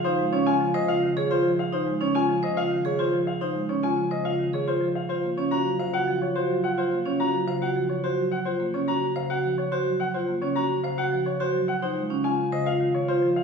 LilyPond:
<<
  \new Staff \with { instrumentName = "Grand piano" } { \time 3/4 \key ges \lydian \tempo 4 = 107 c''16 r16 des''16 aes''16 r16 ees''16 f''16 r16 des''16 c''16 r16 f''16 | c''16 r16 des''16 aes''16 r16 ees''16 f''16 r16 des''16 c''16 r16 f''16 | c''16 r16 des''16 aes''16 r16 ees''16 f''16 r16 des''16 c''16 r16 f''16 | c''16 r16 des''16 bes''16 r16 f''16 ges''16 r16 des''16 c''16 r16 ges''16 |
c''16 r16 des''16 bes''16 r16 f''16 ges''16 r16 des''16 c''16 r16 ges''16 | c''16 r16 des''16 bes''16 r16 f''16 ges''16 r16 des''16 c''16 r16 ges''16 | c''16 r16 des''16 bes''16 r16 f''16 ges''16 r16 des''16 c''16 r16 ges''16 | c''16 r8 aes''16 r16 ees''16 f''16 r16 des''16 c''16 r16 f''16 | }
  \new Staff \with { instrumentName = "French horn" } { \time 3/4 \key ges \lydian f'2~ f'8. r16 | r2. | r2. | f'2.~ |
f'2~ f'8. r16 | r2. | r2. | f'2. | }
  \new Staff \with { instrumentName = "Vibraphone" } { \time 3/4 \key ges \lydian ees'16 r16 des'16 f'16 r16 c''16 f'16 r16 aes'16 f'16 r8 | ees'16 r16 des'16 f'16 r16 c''16 f'16 r16 aes'16 f'16 r8 | ees'16 r16 des'16 f'16 r16 c''16 f'16 r16 aes'16 f'16 r8 | f'16 r16 des'16 ges'16 r16 c''16 ges'16 r8 ges'16 r8 |
f'16 r16 des'16 ges'16 r16 c''16 ges'16 r8 ges'16 r8 | f'16 r16 des'16 ges'16 r16 c''16 ges'16 r8 ges'16 r8 | f'16 r16 des'16 ges'16 r16 c''16 ges'16 r8 ges'16 r8 | ees'16 r16 des'16 f'16 r16 c''16 f'16 r8 f'16 r8 | }
  \new Staff \with { instrumentName = "Marimba" } { \clef bass \time 3/4 \key ges \lydian r16 aes16 des16 r16 f16 des16 r16 ees16 r8 f16 r16 | r16 aes16 des16 r16 f16 des16 r16 ees16 r8 f16 r16 | r16 aes16 des16 r16 f16 des16 r16 ees16 r8 f16 r16 | r16 bes16 des16 r16 ges16 des16 r16 f16 r8 ges16 r16 |
r16 bes16 r8 ges16 des16 r16 f16 r8 ges16 r16 | r16 bes16 des16 r8 des16 r16 f16 r8 ges16 r16 | r16 bes16 des16 r8 des16 r16 f16 r8 ges16 r16 | r16 aes16 des16 r8 des16 r16 ees16 r8 f16 r16 | }
>>